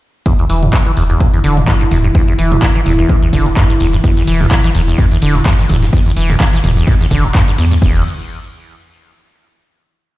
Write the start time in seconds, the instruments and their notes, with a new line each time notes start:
0.26 acid bass E2, analog synth pad E3 E4, kick, closed hi-hat
0.39 acid bass E2, closed hi-hat
0.50 sub bass E1, acid bass E3, open hi-hat
0.63 acid bass D2, closed hi-hat, mid tom
0.73 acid bass E3, kick, clap, closed hi-hat
0.86 acid bass E3, closed hi-hat
0.97 sub bass E1, acid bass E2, open hi-hat
1.10 acid bass E2, closed hi-hat
1.20 acid bass B2, kick, closed hi-hat
1.34 acid bass E2, closed hi-hat
1.44 sub bass E1, acid bass D3, open hi-hat
1.57 acid bass E2, closed hi-hat, mid tom
1.68 acid bass G2, kick, clap, closed hi-hat
1.81 acid bass G2, closed hi-hat
1.91 sub bass E1, acid bass E2, mid tom, open hi-hat
2.04 acid bass G2, closed hi-hat
2.15 acid bass E2, kick, closed hi-hat
2.28 acid bass E2, closed hi-hat
2.38 sub bass E1, acid bass E3, open hi-hat
2.51 acid bass D2, closed hi-hat, mid tom
2.62 acid bass E3, kick, clap, closed hi-hat
2.75 acid bass E3, closed hi-hat
2.86 sub bass E1, acid bass E2, mid tom, open hi-hat
2.99 acid bass E2, closed hi-hat
3.09 acid bass B2, kick, closed hi-hat
3.22 acid bass E2, closed hi-hat
3.33 sub bass E1, acid bass D3, kick, open hi-hat
3.46 acid bass E2, closed hi-hat
3.57 acid bass G2, kick, clap, closed hi-hat
3.70 acid bass G2, closed hi-hat
3.80 sub bass E1, acid bass E2, open hi-hat
3.93 acid bass G2, closed hi-hat
4.04 acid bass E2, kick, closed hi-hat, ride
4.17 acid bass E2, snare, closed hi-hat
4.27 sub bass E1, acid bass E3, open hi-hat, ride
4.41 acid bass D2, snare, closed hi-hat, mid tom
4.51 acid bass E3, kick, snare, clap, closed hi-hat, ride
4.64 acid bass E3, closed hi-hat
4.75 sub bass E1, acid bass E2, open hi-hat, ride
4.88 acid bass E2, closed hi-hat
4.98 acid bass B2, kick, closed hi-hat, ride
5.11 acid bass E2, closed hi-hat, ride
5.22 sub bass E1, acid bass D3, open hi-hat, ride
5.35 acid bass E2, closed hi-hat, mid tom
5.46 acid bass G2, kick, snare, clap, closed hi-hat, ride
5.59 acid bass G2, snare, closed hi-hat
5.69 sub bass E1, acid bass E2, mid tom, open hi-hat, ride
5.82 acid bass G2, snare, closed hi-hat
5.93 acid bass E2, kick, closed hi-hat, open hi-hat
6.06 acid bass E2, closed hi-hat
6.16 sub bass E1, acid bass E3, open hi-hat, ride
6.30 acid bass D2, closed hi-hat, mid tom, ride
6.40 acid bass E3, kick, snare, clap, closed hi-hat, ride
6.53 acid bass E3, snare, closed hi-hat
6.64 sub bass E1, acid bass E2, mid tom, open hi-hat, ride
6.77 acid bass E2, closed hi-hat
6.87 acid bass B2, kick, closed hi-hat, ride
7.00 acid bass E2, snare, closed hi-hat
7.11 sub bass E1, acid bass D3, kick, open hi-hat, ride
7.24 acid bass E2, closed hi-hat
7.35 acid bass G2, kick, snare, clap, closed hi-hat, ride
7.48 acid bass G2, closed hi-hat, ride
7.58 sub bass E2, acid bass E2, open hi-hat, ride
7.71 acid bass G2, closed hi-hat
7.82 sub bass E1, acid bass E2, kick, crash